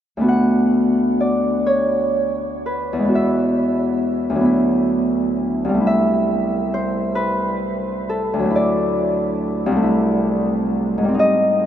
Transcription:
0.17 3.20 D2 soft
0.17 3.17 A3 soft
0.17 3.04 B3 soft
0.24 3.08 F#4 soft
0.28 4.18 F#5 medium
1.20 3.19 D5 medium
1.66 3.34 C#5 medium
2.66 5.90 B4 medium
2.93 4.45 E2 soft
2.99 4.48 G#3 soft
3.05 4.39 B3 soft
3.09 5.87 F#4 soft
3.15 5.86 E5 medium
4.30 5.78 D2 soft
4.35 5.81 F#3 soft
4.40 5.83 B3 soft
4.45 5.79 E4 soft
5.64 8.51 C2 soft
5.69 8.53 G3 soft
5.74 8.44 A3 soft
5.81 8.49 E4 soft
5.87 9.77 E5 medium
6.74 8.61 C5 medium
7.15 8.75 B4 medium
8.09 11.25 A4 medium
8.33 9.81 D2 medium
8.39 9.83 F#3 soft
8.45 9.75 A3 soft
8.50 9.82 E4 soft
8.56 11.24 D5 medium
9.66 11.13 C2 medium
9.72 11.03 G3 medium
9.76 11.18 A3 soft
9.83 11.22 E4 medium
10.98 11.66 G#2 medium
11.04 11.66 G3 soft
11.08 11.66 C4 soft
11.14 11.66 D#4 soft
11.19 11.66 D#5 medium

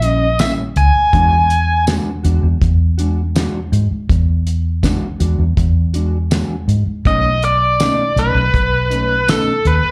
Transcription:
0.00 0.50 A#1 medium
0.00 0.25 C#4 soft
0.00 0.24 E4 medium
0.00 0.05 E5 medium
0.00 closed hi-hat medium
0.04 0.25 G3 soft
0.04 0.40 D#5 medium
0.39 0.61 A#2 medium
0.39 0.62 G3 medium
0.39 0.62 C#4 medium
0.39 0.62 E4 medium
0.39 0.51 E5 loud
0.39 snare medium
0.39 closed hi-hat medium
0.39 tambourine loud
0.76 0.90 C#2 medium
0.76 1.84 G#5 loud
0.76 closed hi-hat medium
0.95 muted fingered electric bass stroke soft
1.13 1.98 E2 loud
1.13 1.35 E3 medium
1.13 1.36 G#3 medium
1.13 1.36 D4 medium
1.13 1.36 F#4 medium
1.13 kick loud
1.13 closed hi-hat medium
1.50 closed hi-hat medium
1.86 2.09 E3 medium
1.86 2.10 G#3 medium
1.86 2.10 D4 loud
1.86 2.10 F#4 loud
1.86 snare loud
1.86 closed hi-hat medium
1.86 tambourine loud
2.23 2.39 E2 medium
2.23 2.48 G#3 soft
2.23 2.47 D4 medium
2.23 2.46 F#4 medium
2.23 closed hi-hat medium
2.43 2.57 E2 loud
2.62 3.46 E2 medium
2.62 kick medium
2.62 closed hi-hat medium
2.98 3.22 G#3 soft
2.98 3.21 D4 medium
2.98 3.20 F#4 medium
2.98 closed hi-hat medium
3.35 3.58 E3 medium
3.35 3.58 G#3 medium
3.35 3.58 D4 medium
3.35 3.59 F#4 medium
3.35 snare loud
3.35 closed hi-hat medium
3.35 tambourine loud
3.72 3.86 G#2 medium
3.72 closed hi-hat medium
3.91 muted fingered electric bass stroke soft
4.09 4.94 E2 loud
4.09 kick loud
4.09 closed hi-hat medium
4.47 closed hi-hat medium
4.83 5.05 E3 medium
4.83 5.06 G#3 medium
4.83 5.06 D4 medium
4.83 5.06 F#4 medium
4.83 kick medium
4.83 snare loud
4.83 closed hi-hat medium
4.83 tambourine loud
5.20 5.35 E2 medium
5.20 5.44 G#3 soft
5.20 5.43 D4 medium
5.20 5.42 F#4 medium
5.20 closed hi-hat medium
5.38 5.53 E2 medium
5.57 6.42 E2 loud
5.57 kick medium
5.57 closed hi-hat medium
5.94 6.18 G#3 soft
5.94 6.17 D4 medium
5.94 6.16 F#4 medium
5.94 closed hi-hat medium
6.31 6.53 E3 medium
6.31 6.54 G#3 medium
6.31 6.54 D4 medium
6.31 6.54 F#4 medium
6.31 snare loud
6.31 closed hi-hat medium
6.31 tambourine medium
6.68 6.82 G#2 medium
6.68 closed hi-hat medium
6.86 muted fingered electric bass stroke soft
7.05 7.90 B1 medium
7.05 7.28 B2 medium
7.05 7.28 A3 medium
7.05 7.29 C#4 medium
7.05 7.29 D#4 medium
7.05 7.44 D#5 loud
7.05 kick loud
7.05 closed hi-hat medium
7.42 8.20 D5 loud
7.42 closed hi-hat medium
7.80 8.02 B2 medium
7.80 8.02 A3 medium
7.80 8.03 C#4 medium
7.80 8.03 D#4 medium
7.80 snare loud
7.80 closed hi-hat medium
7.80 tambourine loud
8.16 8.31 B1 medium
8.16 8.40 A3 soft
8.16 8.39 C#4 soft
8.16 8.39 D#4 soft
8.16 9.32 B4 medium
8.16 closed hi-hat medium
8.35 8.49 B1 loud
8.54 9.38 B1 medium
8.54 kick medium
8.54 closed hi-hat medium
8.90 9.14 A3 soft
8.90 9.14 C#4 medium
8.90 9.13 D#4 medium
8.90 closed hi-hat medium
9.27 9.50 B2 medium
9.27 9.50 A3 medium
9.27 9.51 C#4 medium
9.27 9.51 D#4 medium
9.27 9.67 A4 medium
9.27 snare loud
9.27 closed hi-hat medium
9.27 tambourine loud
9.65 9.79 D#2 medium
9.65 9.91 B4 medium
9.65 closed hi-hat medium
9.83 muted fingered electric bass stroke soft

